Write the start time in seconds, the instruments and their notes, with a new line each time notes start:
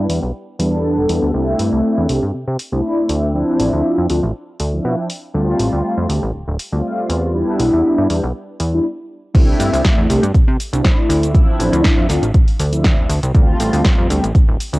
0.09 analog synth bass E2, analog polysynth G3 B3 D4 G4, open hi-hat
0.23 analog synth bass B1
0.59 analog synth bass E2, analog polysynth G3 B3 D4 A4, open hi-hat
0.97 analog synth bass E1
1.09 analog synth bass E2, open hi-hat
1.22 analog synth bass D2
1.33 analog synth bass C2, analog polysynth A3 C4 D4 E4
1.59 analog synth bass G2, open hi-hat
1.72 analog synth bass C2
1.98 analog synth bass E2
2.09 analog synth bass C2, analog polysynth A3 C4 D4 G4, open hi-hat
2.23 analog synth bass G2
2.34 analog synth bass C3
2.48 analog synth bass C3
2.59 open hi-hat
2.72 analog synth bass C2, analog polysynth A3 C4 D4 E4
3.09 analog synth bass D2, open hi-hat
3.33 analog polysynth F3 C4 D4 E4
3.59 analog synth bass A1, open hi-hat
3.73 analog synth bass D2
3.98 analog synth bass F2
4.09 analog synth bass D2, analog polysynth F3 C4 D4 F4, open hi-hat
4.23 analog synth bass A1
4.60 analog synth bass D2, open hi-hat
4.73 analog polysynth F3 C4 D4 E4
4.85 analog synth bass B2
5.10 open hi-hat
5.34 analog synth bass D2, analog polysynth G3 A3 C4 F4
5.59 analog synth bass A1, open hi-hat
5.73 analog synth bass D2
5.98 analog synth bass F2
6.09 analog synth bass D2, analog polysynth G3 A3 C4 G4, open hi-hat
6.23 analog synth bass A1
6.34 analog synth bass D1
6.48 analog synth bass D1
6.59 open hi-hat
6.72 analog synth bass D2, analog polysynth G3 A3 C4 F4
7.09 analog synth bass E2, open hi-hat
7.34 analog polysynth G3 B3 D4 E4
7.59 analog synth bass B1, open hi-hat
7.73 analog synth bass E2
7.98 analog synth bass G2
8.09 analog synth bass E2, analog polysynth G3 B3 D4 G4, open hi-hat
8.23 analog synth bass B1
8.60 analog synth bass E2, open hi-hat
8.72 analog polysynth G3 B3 D4 E4
9.34 analog synth bass C2, analog polysynth A3 C4 D4 E4, kick, closed hi-hat, crash, shaker
9.60 analog synth bass G2, open hi-hat, shaker
9.73 analog synth bass C2, open hi-hat, shaker
9.85 kick, snare, closed hi-hat, shaker
9.98 analog synth bass E2
10.09 analog synth bass C2, analog polysynth A3 C4 D4 G4, open hi-hat, shaker
10.23 analog synth bass G2, closed hi-hat, shaker
10.35 kick, closed hi-hat, shaker
10.48 analog synth bass C3
10.60 open hi-hat, shaker
10.72 analog synth bass C2, analog polysynth A3 C4 D4 E4, closed hi-hat, shaker
10.84 kick, snare, closed hi-hat, shaker
11.09 analog synth bass D2, open hi-hat, shaker
11.23 closed hi-hat, shaker
11.33 analog polysynth F3 C4 D4 E4, kick, closed hi-hat, shaker
11.59 analog synth bass A1, open hi-hat, shaker
11.73 analog synth bass D2, closed hi-hat, shaker
11.84 kick, snare, closed hi-hat, shaker
11.98 analog synth bass F2
12.09 analog synth bass D2, analog polysynth F3 C4 D4 F4, snare, open hi-hat, shaker
12.22 analog synth bass A1, closed hi-hat, shaker
12.34 kick, closed hi-hat, shaker
12.48 open hi-hat
12.60 analog synth bass D2, open hi-hat, shaker
12.72 analog polysynth F3 C4 D4 E4, closed hi-hat, shaker
12.84 kick, snare, closed hi-hat, shaker
12.98 analog synth bass D1
13.10 analog synth bass D2, open hi-hat, shaker
13.23 analog synth bass C2, closed hi-hat, shaker
13.34 analog polysynth G3 A3 C4 F4, kick, closed hi-hat, shaker
13.60 analog synth bass A1, open hi-hat, shaker
13.73 analog synth bass D2, open hi-hat, shaker
13.85 kick, snare, closed hi-hat, shaker
13.98 analog synth bass F2
14.09 analog synth bass D2, analog polysynth G3 A3 C4 G4, open hi-hat, shaker
14.23 analog synth bass A1, closed hi-hat, shaker
14.35 kick, closed hi-hat, shaker
14.48 analog synth bass D1
14.60 open hi-hat, shaker
14.72 analog synth bass D2, analog polysynth G3 A3 C4 F4, closed hi-hat, shaker